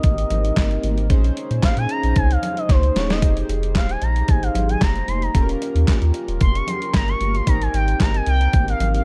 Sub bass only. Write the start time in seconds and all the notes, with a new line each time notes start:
0.04 G#1
0.31 G#1
0.57 G1
0.83 G#1
1.10 A#1
1.51 A#2
1.63 A#2
1.77 A#2
2.03 A#1
2.16 C2
2.69 C#2
2.96 D#1
3.22 F1
3.49 F1
3.75 D#1
4.02 A#1
4.29 G#1
4.55 G#1
4.81 F1
5.08 F1
5.35 D#1
5.75 D#2
5.88 D#2
6.02 D#2
6.28 D#1
6.41 F1
6.94 G1
7.20 G1
7.47 G#1
7.74 G#1
8.00 G1
8.27 C2
8.54 G#1
8.80 G#1